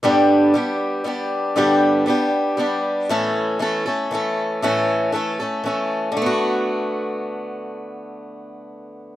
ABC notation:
X:1
M:3/4
L:1/8
Q:1/4=118
K:D
V:1 name="Steel-string acoustic guitar"
[G,,D,G,B,DG]2 [G,B,DG]2 [G,B,DG]2 | [G,,D,G,B,DG]2 [G,B,DG]2 [G,B,DG]2 | [A,,E,A,CA]2 [E,A,CA] [A,CA] [E,A,CA]2 | [A,,E,A,CA]2 [E,A,CA] [A,CA] [E,A,CA]2 |
[D,A,B,F]6- | [D,A,B,F]6 |]